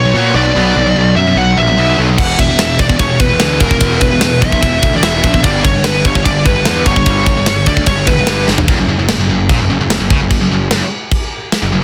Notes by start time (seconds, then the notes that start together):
Already playing: B1 C#5
0.05 B2 F#3
0.14 A#2 B2 F#3 B3
0.34 B1 B2 F#3 B3 D5
0.46 B2 F#3
0.55 B1 B2 F#3 B3
0.76 B1 B2 F#3
0.87 B2 F#3
0.96 B1 B2 F#3
1.16 F#2 B2 F#3 E5
1.27 B2 F#3
1.36 B1 B2 F#3 F#5
1.57 A#1 B2 F#3 E5
1.67 B2 F#3
1.77 B1 B2 F#3 B3
1.98 B1 B2 F#3 B3
2.08 B2 F#3
2.18 E1 E2 B2 E3 F#5, kick, crash
2.39 E1 E2 B2 E5, kick, ride
2.49 E2 B2
2.59 E1 E2 B2, snare, ride
2.79 E1 E2 B2 D5, kick, ride
2.89 E2 B2, kick
2.99 E1 E2 B2 C#5, kick, ride
3.20 E1 E2 B2 B4, kick, ride
3.30 E2 B2
3.40 D2 E2 B2 E3, snare, ride
3.60 E1 E2 B2 E3 A#4, kick, ride
3.71 E2 B2, kick
3.80 E1 E2 B2 E3, kick, ride
4.01 E1 E2 B2 B4, kick, ride
4.11 E2 B2
4.21 E1 E2 B2, snare, ride
4.41 B1 E2 B2 E5, kick, ride
4.52 E2 B2, kick
4.63 E1 E2 B2, kick, ride
4.82 D2 E2 B2, kick, ride
4.93 E2 B2 D5
5.02 E1 E2 B2 E3 E5, snare, ride
5.23 A#1 E2 B2 E3, kick, ride
5.34 E2 B2, kick
5.44 G1 G2 D3 G3 D5, kick, ride
5.64 G1 G2 D3 C#5, kick, ride
5.75 G2 D3
5.84 G1 G2 D3 B4, snare, ride
6.05 G1 G2 D3 C#5, kick, ride
6.15 G2 D3, kick
6.25 G1 G2 D3 D5, kick, ride
6.45 G1 G2 D3 B4, kick, ride
6.56 G2 D3
6.65 E2 G2 D3 G3, snare, ride
6.86 G1 G2 D3 G3 C#5, kick, ride
6.96 G2 D3, kick
7.06 G1 G2 D3 G3, kick, ride
7.26 G1 G2 D3, kick, ride
7.37 G2 D3
7.46 G1 G2 D3, snare, ride
7.66 D2 G2 D3 D5, kick, ride
7.77 G2 D3, kick
7.86 G1 G2 D3 C#5, kick, ride
8.07 E1 G2 D3 B4, kick, ride
8.19 G2 D3
8.27 G1 G2 D3 G3, snare, ride
8.47 G1 G2 D3 G3, snare
8.58 G2 D3, floor tom
8.68 F#1 F#2, kick, china
8.78 F#1 F#2
8.88 F#1 F#2
8.98 F#1 F#2
9.08 F#1 F#2, snare, china
9.18 F#1 F#2
9.29 F#1 F#2
9.49 A#1 A#2, kick, china
9.59 F#1 F#2
9.69 F#1 F#2
9.79 F#1 F#2
9.89 F#1 F#2, snare, china
9.99 F#1 F#2
10.10 C#2 C#3, kick
10.19 F#1 F#2
10.31 F#1 F#2, kick, china
10.40 F#1 F#2
10.50 F#1 F#2
10.70 F#1 F#2, snare, china
11.11 kick, china
11.52 snare, china
11.63 F#1 F#2
11.73 F#1 F#2